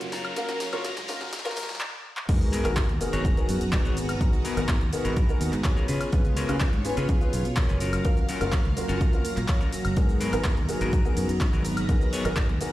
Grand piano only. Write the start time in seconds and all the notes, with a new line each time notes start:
Already playing: A#3 C#4 F4 F#4 C#5
0.37 F#3 A#3 C#4 A#4 F5
0.73 A#3 C#4 F4 F#4 A#4
1.09 A#3 C#4 F4 F#4 A#4
1.45 A#3 C#4 F4 F#4 A#4
2.28 B3 D#4 F#4 G#4 A#4
2.64 B3 D#4 F#4 G#4 A#4
3.00 B3 D#4 F#4 G#4 A#4
3.37 B3 D#4 F#4 G#4 A#4
3.72 B3 D#4 F#4 G#4 B4
4.20 B3 D#4 F#4 G#4 A#5
4.57 B3 D#4 F#4 G#4 A#4
4.92 B3 D#4 F#4 G#4 A#4
5.29 B3 D#4 F#4 G#4 A#4
5.65 B3 C#4 F4 G#4 C#5
6.13 B3 C#4 F4 G#4 B4
6.49 B3 C#4 F4 G#4 B4
6.84 B3 C#4 F4 G#4 B4
7.20 B3 C#4 F4 G#4 B4
7.56 A#3 C#4 F4 F#4 C#5
8.05 F#3 A#3 C#4 A#4 F5
8.41 A#3 C#4 F4 F#4 A#4
8.77 A#3 C#4 F4 F#4 A#4
9.13 A#3 C#4 F4 F#4 A#4
9.49 F#3 A#3 C#4 C#5 F5
9.97 B3 D#4 F#4 G#4 A#4
10.33 B3 D#4 F#4 G#4 A#4
10.68 B3 D#4 F#4 G#4 A#4
11.05 B3 D#4 F#4 G#4 A#4
11.41 B3 D#4 F#4 G#4
11.89 B3 D#4 F#4 G#4 A#4
12.25 B3 D#4 F#4 G#4 A#4
12.61 B3 D#4 F#4 G#4 A#4